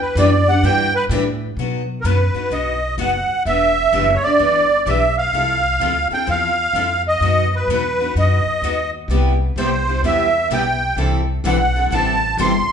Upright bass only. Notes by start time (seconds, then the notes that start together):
0.15 F#2
0.63 G2
1.09 A2
1.57 B2
2.04 F#2
2.35 muted upright bass stroke
2.51 B1
2.98 F#1
3.28 muted upright bass stroke
3.45 E1
3.93 F#1
4.23 muted upright bass stroke
4.40 G1
4.86 B1
5.33 C2
5.80 D2
6.11 muted upright bass stroke
6.28 E2
6.73 F2
7.21 F#2
7.68 E2
8.15 F#2
8.46 muted upright bass stroke
8.62 D#2
9.08 C2
9.56 C2
10.03 E2
10.50 B1
10.97 C2
11.44 B1
11.91 A1
12.37 G1
12.68 muted upright bass stroke